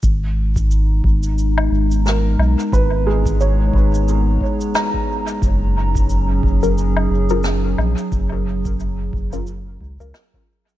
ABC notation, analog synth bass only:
X:1
M:4/4
L:1/16
Q:"Swing 16ths" 1/4=89
K:G#m
V:1 name="Analog synth bass" clef=bass
G,,,6 G,,,4 G,,,4 B,,, z | G,,,6 G,,,4 z6 | F,,,6 F,,,4 F,,,4 A,,, z | F,,,6 F,,,4 C,, C,, z4 |]